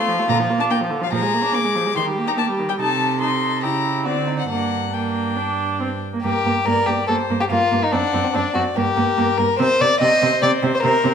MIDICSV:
0, 0, Header, 1, 5, 480
1, 0, Start_track
1, 0, Key_signature, -2, "minor"
1, 0, Tempo, 418410
1, 1280, Time_signature, 4, 2, 24, 8
1, 4164, Tempo, 433526
1, 7524, Tempo, 417246
1, 12674, End_track
2, 0, Start_track
2, 0, Title_t, "Violin"
2, 0, Program_c, 0, 40
2, 0, Note_on_c, 0, 84, 68
2, 311, Note_off_c, 0, 84, 0
2, 332, Note_on_c, 0, 82, 76
2, 424, Note_off_c, 0, 82, 0
2, 691, Note_on_c, 0, 81, 71
2, 737, Note_off_c, 0, 81, 0
2, 806, Note_on_c, 0, 79, 67
2, 898, Note_off_c, 0, 79, 0
2, 1185, Note_on_c, 0, 77, 65
2, 1287, Note_off_c, 0, 77, 0
2, 1294, Note_on_c, 0, 82, 78
2, 1771, Note_on_c, 0, 86, 78
2, 1788, Note_off_c, 0, 82, 0
2, 2247, Note_off_c, 0, 86, 0
2, 2255, Note_on_c, 0, 84, 69
2, 2346, Note_off_c, 0, 84, 0
2, 2610, Note_on_c, 0, 82, 66
2, 2657, Note_off_c, 0, 82, 0
2, 2730, Note_on_c, 0, 81, 68
2, 2821, Note_off_c, 0, 81, 0
2, 3084, Note_on_c, 0, 79, 61
2, 3132, Note_off_c, 0, 79, 0
2, 3214, Note_on_c, 0, 81, 66
2, 3672, Note_off_c, 0, 81, 0
2, 3679, Note_on_c, 0, 84, 60
2, 4152, Note_off_c, 0, 84, 0
2, 4164, Note_on_c, 0, 82, 60
2, 4624, Note_off_c, 0, 82, 0
2, 4631, Note_on_c, 0, 74, 52
2, 4987, Note_off_c, 0, 74, 0
2, 5003, Note_on_c, 0, 78, 49
2, 5108, Note_off_c, 0, 78, 0
2, 5114, Note_on_c, 0, 78, 58
2, 5603, Note_on_c, 0, 79, 45
2, 5619, Note_off_c, 0, 78, 0
2, 6812, Note_off_c, 0, 79, 0
2, 7052, Note_on_c, 0, 70, 59
2, 7490, Note_off_c, 0, 70, 0
2, 7526, Note_on_c, 0, 74, 49
2, 7999, Note_off_c, 0, 74, 0
2, 8008, Note_on_c, 0, 72, 60
2, 8481, Note_off_c, 0, 72, 0
2, 8491, Note_on_c, 0, 70, 57
2, 8976, Note_on_c, 0, 78, 66
2, 8993, Note_off_c, 0, 70, 0
2, 9464, Note_on_c, 0, 74, 56
2, 9481, Note_off_c, 0, 78, 0
2, 9933, Note_on_c, 0, 70, 63
2, 9950, Note_off_c, 0, 74, 0
2, 11353, Note_off_c, 0, 70, 0
2, 11360, Note_on_c, 0, 72, 66
2, 12674, Note_off_c, 0, 72, 0
2, 12674, End_track
3, 0, Start_track
3, 0, Title_t, "Violin"
3, 0, Program_c, 1, 40
3, 0, Note_on_c, 1, 65, 55
3, 1284, Note_on_c, 1, 68, 52
3, 1301, Note_off_c, 1, 65, 0
3, 2237, Note_on_c, 1, 67, 48
3, 2254, Note_off_c, 1, 68, 0
3, 3195, Note_off_c, 1, 67, 0
3, 3202, Note_on_c, 1, 69, 47
3, 3648, Note_off_c, 1, 69, 0
3, 3684, Note_on_c, 1, 69, 45
3, 4160, Note_on_c, 1, 67, 45
3, 4176, Note_off_c, 1, 69, 0
3, 4634, Note_on_c, 1, 66, 39
3, 4651, Note_off_c, 1, 67, 0
3, 4877, Note_on_c, 1, 63, 39
3, 4894, Note_off_c, 1, 66, 0
3, 5107, Note_off_c, 1, 63, 0
3, 5113, Note_on_c, 1, 62, 37
3, 5592, Note_off_c, 1, 62, 0
3, 5611, Note_on_c, 1, 62, 40
3, 6804, Note_off_c, 1, 62, 0
3, 7046, Note_on_c, 1, 67, 73
3, 7515, Note_on_c, 1, 70, 83
3, 7532, Note_off_c, 1, 67, 0
3, 7753, Note_on_c, 1, 67, 70
3, 7770, Note_off_c, 1, 70, 0
3, 7989, Note_off_c, 1, 67, 0
3, 7996, Note_on_c, 1, 69, 73
3, 8088, Note_off_c, 1, 69, 0
3, 8376, Note_on_c, 1, 67, 68
3, 8423, Note_off_c, 1, 67, 0
3, 8497, Note_on_c, 1, 65, 74
3, 8875, Note_on_c, 1, 63, 62
3, 8892, Note_off_c, 1, 65, 0
3, 8969, Note_on_c, 1, 62, 72
3, 8986, Note_off_c, 1, 63, 0
3, 9338, Note_on_c, 1, 60, 66
3, 9355, Note_off_c, 1, 62, 0
3, 9431, Note_off_c, 1, 60, 0
3, 9438, Note_on_c, 1, 62, 77
3, 9682, Note_off_c, 1, 62, 0
3, 9688, Note_on_c, 1, 66, 69
3, 9780, Note_off_c, 1, 66, 0
3, 9936, Note_on_c, 1, 67, 75
3, 10645, Note_on_c, 1, 70, 81
3, 10662, Note_off_c, 1, 67, 0
3, 10884, Note_off_c, 1, 70, 0
3, 10890, Note_on_c, 1, 72, 92
3, 11144, Note_on_c, 1, 74, 90
3, 11161, Note_off_c, 1, 72, 0
3, 11360, Note_off_c, 1, 74, 0
3, 11367, Note_on_c, 1, 75, 91
3, 11840, Note_off_c, 1, 75, 0
3, 11848, Note_on_c, 1, 74, 86
3, 11940, Note_off_c, 1, 74, 0
3, 12219, Note_on_c, 1, 72, 76
3, 12309, Note_off_c, 1, 72, 0
3, 12316, Note_on_c, 1, 70, 84
3, 12671, Note_off_c, 1, 70, 0
3, 12674, End_track
4, 0, Start_track
4, 0, Title_t, "Viola"
4, 0, Program_c, 2, 41
4, 96, Note_on_c, 2, 53, 55
4, 223, Note_on_c, 2, 57, 48
4, 240, Note_off_c, 2, 53, 0
4, 322, Note_off_c, 2, 57, 0
4, 329, Note_on_c, 2, 50, 48
4, 453, Note_on_c, 2, 53, 48
4, 470, Note_off_c, 2, 50, 0
4, 570, Note_on_c, 2, 58, 52
4, 587, Note_off_c, 2, 53, 0
4, 680, Note_on_c, 2, 62, 49
4, 697, Note_off_c, 2, 58, 0
4, 809, Note_on_c, 2, 58, 47
4, 826, Note_off_c, 2, 62, 0
4, 925, Note_on_c, 2, 53, 46
4, 943, Note_off_c, 2, 58, 0
4, 1039, Note_on_c, 2, 50, 48
4, 1056, Note_off_c, 2, 53, 0
4, 1160, Note_on_c, 2, 53, 47
4, 1177, Note_off_c, 2, 50, 0
4, 1269, Note_off_c, 2, 53, 0
4, 1276, Note_on_c, 2, 53, 57
4, 1400, Note_on_c, 2, 56, 52
4, 1417, Note_off_c, 2, 53, 0
4, 1535, Note_on_c, 2, 58, 40
4, 1553, Note_off_c, 2, 56, 0
4, 1647, Note_on_c, 2, 62, 49
4, 1664, Note_off_c, 2, 58, 0
4, 1776, Note_on_c, 2, 58, 51
4, 1793, Note_off_c, 2, 62, 0
4, 1890, Note_on_c, 2, 56, 49
4, 1907, Note_off_c, 2, 58, 0
4, 2013, Note_on_c, 2, 53, 54
4, 2030, Note_off_c, 2, 56, 0
4, 2140, Note_on_c, 2, 56, 45
4, 2158, Note_off_c, 2, 53, 0
4, 2247, Note_off_c, 2, 56, 0
4, 2254, Note_on_c, 2, 51, 47
4, 2369, Note_on_c, 2, 55, 42
4, 2387, Note_off_c, 2, 51, 0
4, 2502, Note_on_c, 2, 58, 47
4, 2519, Note_off_c, 2, 55, 0
4, 2603, Note_on_c, 2, 63, 44
4, 2620, Note_off_c, 2, 58, 0
4, 2719, Note_on_c, 2, 58, 45
4, 2736, Note_off_c, 2, 63, 0
4, 2845, Note_on_c, 2, 55, 43
4, 2862, Note_off_c, 2, 58, 0
4, 2967, Note_on_c, 2, 51, 47
4, 2984, Note_off_c, 2, 55, 0
4, 3088, Note_on_c, 2, 55, 45
4, 3105, Note_off_c, 2, 51, 0
4, 3205, Note_off_c, 2, 55, 0
4, 3211, Note_on_c, 2, 63, 45
4, 3652, Note_off_c, 2, 63, 0
4, 3687, Note_on_c, 2, 63, 44
4, 4168, Note_on_c, 2, 64, 42
4, 4184, Note_off_c, 2, 63, 0
4, 4636, Note_on_c, 2, 60, 41
4, 4653, Note_off_c, 2, 64, 0
4, 5111, Note_off_c, 2, 60, 0
4, 5118, Note_on_c, 2, 58, 36
4, 5594, Note_off_c, 2, 58, 0
4, 5603, Note_on_c, 2, 58, 40
4, 6085, Note_on_c, 2, 62, 44
4, 6102, Note_off_c, 2, 58, 0
4, 6563, Note_off_c, 2, 62, 0
4, 6569, Note_on_c, 2, 60, 37
4, 6658, Note_off_c, 2, 60, 0
4, 6936, Note_on_c, 2, 58, 36
4, 7045, Note_off_c, 2, 58, 0
4, 7051, Note_on_c, 2, 58, 50
4, 7140, Note_off_c, 2, 58, 0
4, 7296, Note_on_c, 2, 58, 44
4, 7385, Note_off_c, 2, 58, 0
4, 7530, Note_on_c, 2, 58, 47
4, 7622, Note_off_c, 2, 58, 0
4, 7762, Note_on_c, 2, 58, 46
4, 7854, Note_off_c, 2, 58, 0
4, 8011, Note_on_c, 2, 58, 49
4, 8103, Note_off_c, 2, 58, 0
4, 8258, Note_on_c, 2, 58, 45
4, 8350, Note_off_c, 2, 58, 0
4, 8500, Note_on_c, 2, 58, 47
4, 8592, Note_off_c, 2, 58, 0
4, 8732, Note_on_c, 2, 58, 45
4, 8824, Note_off_c, 2, 58, 0
4, 8972, Note_on_c, 2, 60, 53
4, 9064, Note_off_c, 2, 60, 0
4, 9214, Note_on_c, 2, 60, 45
4, 9306, Note_off_c, 2, 60, 0
4, 9445, Note_on_c, 2, 60, 51
4, 9537, Note_off_c, 2, 60, 0
4, 9688, Note_on_c, 2, 60, 51
4, 9781, Note_off_c, 2, 60, 0
4, 9930, Note_on_c, 2, 58, 51
4, 10022, Note_off_c, 2, 58, 0
4, 10171, Note_on_c, 2, 58, 52
4, 10263, Note_off_c, 2, 58, 0
4, 10418, Note_on_c, 2, 58, 54
4, 10510, Note_off_c, 2, 58, 0
4, 10652, Note_on_c, 2, 58, 45
4, 10744, Note_off_c, 2, 58, 0
4, 10895, Note_on_c, 2, 60, 62
4, 10987, Note_off_c, 2, 60, 0
4, 11132, Note_on_c, 2, 60, 45
4, 11224, Note_off_c, 2, 60, 0
4, 11370, Note_on_c, 2, 60, 60
4, 11462, Note_off_c, 2, 60, 0
4, 11615, Note_on_c, 2, 60, 56
4, 11707, Note_off_c, 2, 60, 0
4, 11854, Note_on_c, 2, 60, 53
4, 11946, Note_off_c, 2, 60, 0
4, 12085, Note_on_c, 2, 60, 56
4, 12177, Note_off_c, 2, 60, 0
4, 12318, Note_on_c, 2, 60, 61
4, 12410, Note_off_c, 2, 60, 0
4, 12561, Note_on_c, 2, 60, 55
4, 12653, Note_off_c, 2, 60, 0
4, 12674, End_track
5, 0, Start_track
5, 0, Title_t, "Cello"
5, 0, Program_c, 3, 42
5, 329, Note_on_c, 3, 46, 69
5, 705, Note_off_c, 3, 46, 0
5, 1284, Note_on_c, 3, 46, 64
5, 1662, Note_off_c, 3, 46, 0
5, 2248, Note_on_c, 3, 51, 58
5, 2626, Note_off_c, 3, 51, 0
5, 3214, Note_on_c, 3, 48, 48
5, 4166, Note_on_c, 3, 49, 45
5, 4183, Note_off_c, 3, 48, 0
5, 4642, Note_on_c, 3, 50, 44
5, 4658, Note_off_c, 3, 49, 0
5, 5121, Note_off_c, 3, 50, 0
5, 5129, Note_on_c, 3, 43, 36
5, 6796, Note_off_c, 3, 43, 0
5, 7051, Note_on_c, 3, 43, 55
5, 7140, Note_off_c, 3, 43, 0
5, 7289, Note_on_c, 3, 43, 53
5, 7377, Note_off_c, 3, 43, 0
5, 7524, Note_on_c, 3, 43, 58
5, 7616, Note_off_c, 3, 43, 0
5, 7765, Note_on_c, 3, 43, 48
5, 7857, Note_off_c, 3, 43, 0
5, 8006, Note_on_c, 3, 43, 51
5, 8098, Note_off_c, 3, 43, 0
5, 8253, Note_on_c, 3, 43, 53
5, 8346, Note_off_c, 3, 43, 0
5, 8490, Note_on_c, 3, 43, 55
5, 8582, Note_off_c, 3, 43, 0
5, 8737, Note_on_c, 3, 43, 54
5, 8829, Note_off_c, 3, 43, 0
5, 8984, Note_on_c, 3, 42, 59
5, 9076, Note_off_c, 3, 42, 0
5, 9217, Note_on_c, 3, 42, 58
5, 9309, Note_off_c, 3, 42, 0
5, 9461, Note_on_c, 3, 42, 58
5, 9553, Note_off_c, 3, 42, 0
5, 9696, Note_on_c, 3, 42, 55
5, 9788, Note_off_c, 3, 42, 0
5, 9941, Note_on_c, 3, 43, 65
5, 10033, Note_off_c, 3, 43, 0
5, 10175, Note_on_c, 3, 43, 57
5, 10267, Note_off_c, 3, 43, 0
5, 10415, Note_on_c, 3, 43, 60
5, 10507, Note_off_c, 3, 43, 0
5, 10654, Note_on_c, 3, 43, 57
5, 10746, Note_off_c, 3, 43, 0
5, 10895, Note_on_c, 3, 48, 60
5, 10987, Note_off_c, 3, 48, 0
5, 11138, Note_on_c, 3, 48, 61
5, 11230, Note_off_c, 3, 48, 0
5, 11372, Note_on_c, 3, 48, 65
5, 11464, Note_off_c, 3, 48, 0
5, 11613, Note_on_c, 3, 48, 65
5, 11705, Note_off_c, 3, 48, 0
5, 11849, Note_on_c, 3, 48, 69
5, 11941, Note_off_c, 3, 48, 0
5, 12083, Note_on_c, 3, 48, 71
5, 12175, Note_off_c, 3, 48, 0
5, 12325, Note_on_c, 3, 48, 68
5, 12417, Note_off_c, 3, 48, 0
5, 12559, Note_on_c, 3, 48, 66
5, 12651, Note_off_c, 3, 48, 0
5, 12674, End_track
0, 0, End_of_file